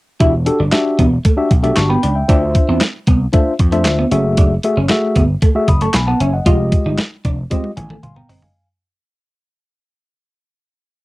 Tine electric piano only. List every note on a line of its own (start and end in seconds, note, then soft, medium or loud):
0.20 0.33 D4 medium
0.20 0.33 F#4 medium
0.20 0.33 G4 medium
0.20 0.33 E5 medium
0.46 0.59 D4 medium
0.46 0.59 F#4 medium
0.46 0.59 G4 medium
0.46 0.59 A4 loud
0.72 1.05 D4 loud
0.72 1.05 F#4 medium
0.72 1.05 G4 medium
0.72 1.05 E5 loud
1.37 1.50 D4 medium
1.37 1.51 F#4 medium
1.37 1.51 G4 medium
1.37 1.51 E5 loud
1.63 1.96 D4 medium
1.63 1.96 F#4 medium
1.63 1.96 G4 medium
1.63 1.77 E5 loud
1.76 1.89 A5 medium
1.76 1.89 C#6 medium
1.89 2.14 G5 medium
1.89 2.14 B5 medium
2.15 2.28 E5 soft
2.15 2.40 G5 medium
2.28 2.81 D4 medium
2.28 2.81 F4 medium
2.28 2.81 C5 medium
2.28 2.81 E5 medium
3.33 3.53 D4 medium
3.33 3.53 F4 medium
3.33 3.53 C5 medium
3.33 3.53 E5 loud
3.72 4.05 D4 medium
3.72 4.05 F4 medium
3.72 4.05 C5 medium
3.72 4.05 E5 medium
4.11 4.53 A3 medium
4.11 4.53 F#4 medium
4.11 4.53 G#4 medium
4.11 4.53 E5 loud
4.64 4.77 A3 medium
4.64 4.77 F#4 medium
4.64 4.77 G#4 medium
4.64 4.77 E5 loud
4.90 5.22 A3 loud
4.90 5.23 F#4 medium
4.90 5.23 G#4 medium
4.90 5.23 E5 loud
5.55 5.68 A3 medium
5.55 5.68 F#4 medium
5.55 5.68 G#4 medium
5.55 5.68 E5 loud
5.68 5.81 B5 medium
5.68 5.81 D#6 medium
5.82 5.94 A5 medium
5.82 5.94 C#6 medium
5.94 6.07 G#5 medium
5.94 6.07 B5 medium
6.07 6.20 F#5 medium
6.07 6.20 A5 medium
6.20 6.33 E5 soft
6.20 6.33 G#5 medium
6.33 6.45 D#5 soft
6.33 6.58 F#5 soft
6.46 6.98 G#3 medium
6.46 6.98 F4 medium
6.46 6.98 G4 medium
6.46 6.99 D#5 medium
7.50 7.70 G#3 medium
7.50 7.70 F4 medium
7.50 7.70 G4 medium
7.50 7.71 D#5 loud
7.77 8.01 G#5 medium
8.03 8.27 F5 medium
8.03 8.16 G#5 medium
8.03 8.15 C6 medium
8.16 8.41 G5 medium
8.16 8.41 A#5 medium
8.29 8.53 D#5 medium
8.42 8.67 F5 medium
8.42 8.67 G#5 medium